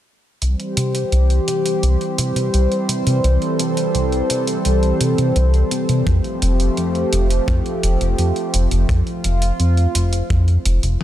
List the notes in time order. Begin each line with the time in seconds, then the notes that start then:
0.42 C2 E3 G3 C4 G4 C5, closed hi-hat
0.60 closed hi-hat
0.77 C3, closed hi-hat
0.95 closed hi-hat
1.12 C2, closed hi-hat
1.30 closed hi-hat
1.48 C3, closed hi-hat
1.66 closed hi-hat
1.83 C2, closed hi-hat
2.01 closed hi-hat
2.18 C3, closed hi-hat
2.36 C3, closed hi-hat
2.54 C2, closed hi-hat
2.72 closed hi-hat
2.89 C3, closed hi-hat
3.07 C3, closed hi-hat
3.24 C2 A4, closed hi-hat
3.42 closed hi-hat
3.59 C3, closed hi-hat
3.77 closed hi-hat
3.95 C2, closed hi-hat
4.12 closed hi-hat
4.30 C3, closed hi-hat
4.47 closed hi-hat
4.65 C2, closed hi-hat
4.83 closed hi-hat
5.01 C3, closed hi-hat
5.18 C3, closed hi-hat
5.36 C2, closed hi-hat
5.54 closed hi-hat
5.71 C3, closed hi-hat
5.89 C3, closed hi-hat
6.07 F2 F3 A3 G4, kick, closed hi-hat
6.24 closed hi-hat
6.42 F1, closed hi-hat
6.60 closed hi-hat
6.77 F2, closed hi-hat
6.95 closed hi-hat
7.13 F1, closed hi-hat
7.30 closed hi-hat
7.48 F2, kick, closed hi-hat
7.66 closed hi-hat
7.83 F1, closed hi-hat
8.01 F1, closed hi-hat
8.18 F2, closed hi-hat
8.36 closed hi-hat
8.54 F1, closed hi-hat
8.71 F1, closed hi-hat
8.89 F2 F4, kick, closed hi-hat
9.07 closed hi-hat
9.24 F1, closed hi-hat
9.42 closed hi-hat
9.60 F2, closed hi-hat
9.77 closed hi-hat
9.95 F1, closed hi-hat
10.13 closed hi-hat
10.30 F2, kick, closed hi-hat
10.48 closed hi-hat
10.65 F1, closed hi-hat
10.83 F1, closed hi-hat